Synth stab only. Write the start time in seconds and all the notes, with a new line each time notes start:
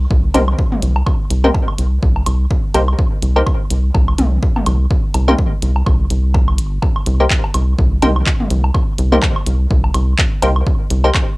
0.34 A#3 D#4 G4 C5
1.44 A#3 D#4 G4 C5
2.74 A#3 D#4 G4 C5
3.36 A#3 D#4 G4 C5
5.28 A#3 D#4 G4 C5
7.20 A#3 D#4 G4 C5
8.02 A#3 D#4 G4 C5
9.12 A#3 D#4 G4 C5
10.42 A#3 D#4 G4 C5
11.04 A#3 D#4 G4 C5